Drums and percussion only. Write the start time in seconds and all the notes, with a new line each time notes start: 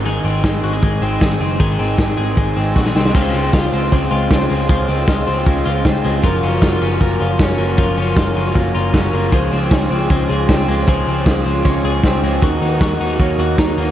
0.05 closed hi-hat
0.25 open hi-hat
0.44 kick, snare, closed hi-hat
0.64 open hi-hat
0.83 kick, closed hi-hat
1.02 open hi-hat
1.21 kick, snare, closed hi-hat
1.41 open hi-hat
1.60 kick, closed hi-hat
1.80 open hi-hat
1.98 kick, snare, closed hi-hat
2.18 open hi-hat
2.37 kick, closed hi-hat
2.56 open hi-hat
2.76 kick, snare
2.86 snare
2.96 snare
3.06 snare
3.15 kick, crash
3.34 hi-hat pedal, open hi-hat
3.53 kick, snare, hi-hat pedal, open hi-hat
3.73 hi-hat pedal, open hi-hat
3.92 kick, hi-hat pedal, open hi-hat
4.11 hi-hat pedal, open hi-hat
4.31 kick, snare, hi-hat pedal, open hi-hat
4.50 hi-hat pedal, open hi-hat
4.69 kick, hi-hat pedal, open hi-hat
4.89 hi-hat pedal, open hi-hat
5.08 kick, snare, hi-hat pedal, open hi-hat
5.27 hi-hat pedal, open hi-hat
5.46 kick, hi-hat pedal, open hi-hat
5.65 hi-hat pedal, open hi-hat
5.85 kick, snare, hi-hat pedal, open hi-hat
6.04 hi-hat pedal, open hi-hat
6.24 kick, hi-hat pedal, open hi-hat
6.43 hi-hat pedal, open hi-hat
6.62 kick, snare, hi-hat pedal, open hi-hat
6.81 hi-hat pedal, open hi-hat
7.01 kick, hi-hat pedal, open hi-hat
7.20 hi-hat pedal, open hi-hat
7.39 kick, snare, hi-hat pedal, open hi-hat
7.59 hi-hat pedal, open hi-hat
7.78 kick, hi-hat pedal, open hi-hat
7.97 hi-hat pedal, open hi-hat
8.17 kick, snare, hi-hat pedal, open hi-hat
8.36 hi-hat pedal, open hi-hat
8.55 kick, hi-hat pedal, open hi-hat
8.74 hi-hat pedal, open hi-hat
8.94 kick, snare, hi-hat pedal, open hi-hat
9.13 hi-hat pedal, open hi-hat
9.32 kick, hi-hat pedal, open hi-hat
9.52 hi-hat pedal, open hi-hat
9.71 kick, snare, hi-hat pedal, open hi-hat
9.91 hi-hat pedal, open hi-hat
10.10 kick, hi-hat pedal, open hi-hat
10.29 hi-hat pedal, open hi-hat
10.49 kick, snare, hi-hat pedal, open hi-hat
10.69 hi-hat pedal, open hi-hat
10.88 kick, hi-hat pedal, open hi-hat
11.07 hi-hat pedal, open hi-hat
11.26 kick, snare, hi-hat pedal, open hi-hat
11.46 hi-hat pedal, open hi-hat
11.65 kick, hi-hat pedal, open hi-hat
11.84 hi-hat pedal, open hi-hat
12.04 kick, snare, hi-hat pedal, open hi-hat
12.24 hi-hat pedal, open hi-hat
12.42 kick, hi-hat pedal, open hi-hat
12.62 hi-hat pedal, open hi-hat
12.81 kick, snare, hi-hat pedal, open hi-hat
13.01 hi-hat pedal, open hi-hat
13.20 kick, hi-hat pedal, open hi-hat
13.38 hi-hat pedal, open hi-hat
13.58 kick, snare, hi-hat pedal, open hi-hat
13.78 hi-hat pedal, open hi-hat